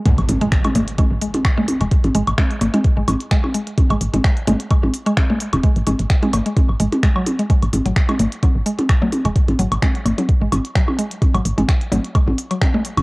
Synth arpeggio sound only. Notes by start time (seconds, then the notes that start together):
0.05 G#3
0.41 G#3
0.65 G#3
0.98 G#3
1.22 G#3
1.58 G#3
1.81 G#3
2.15 G#3
2.38 G#3
2.74 G#3
2.97 G#3
3.31 G#3
3.54 G#3
3.90 G#3
4.14 G#3
4.47 G#3
4.71 G#3
5.06 G#3
5.30 G#3
5.64 G#3
5.87 G#3
6.23 G#3
6.46 G#3
6.80 G#3
7.03 G#3
7.16 F#3
7.39 G#3
7.50 G#3
7.85 F#3
8.09 G#3
8.43 F#3
8.66 G#3
9.02 F#3
9.25 G#3
9.59 F#3
9.82 G#3
10.18 F#3
10.41 G#3
10.75 F#3
10.99 G#3
11.34 F#3
11.58 G#3
11.92 F#3
12.15 G#3
12.51 F#3
12.74 G#3